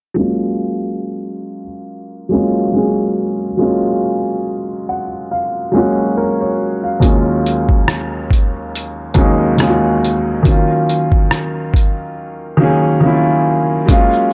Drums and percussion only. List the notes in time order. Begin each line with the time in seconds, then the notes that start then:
7.02 kick, closed hi-hat
7.46 closed hi-hat
7.69 kick
7.88 cross-stick, closed hi-hat
8.31 kick, closed hi-hat
8.75 closed hi-hat
9.14 kick, closed hi-hat
9.58 cross-stick, closed hi-hat
10.05 closed hi-hat
10.45 kick, closed hi-hat
10.89 closed hi-hat
11.12 kick
11.31 cross-stick, closed hi-hat
11.74 kick, closed hi-hat
13.89 kick, closed hi-hat, shaker
14.13 shaker